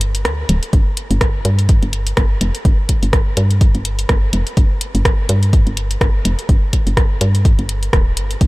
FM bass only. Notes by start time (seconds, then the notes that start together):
Already playing: G1
0.25 D2
0.49 D1
0.73 G1
1.11 G1
1.45 G2
1.82 G1
2.17 G1
2.41 F1
2.65 G1
3.03 G1
3.37 G2
3.75 G1
4.09 G1
4.33 F1
4.57 G1
4.95 G1
5.29 G2
5.67 G1
6.01 G1
6.25 F1
6.49 G1
6.87 G1
7.21 G2
7.59 G1
7.93 D1
8.17 G1
8.41 G1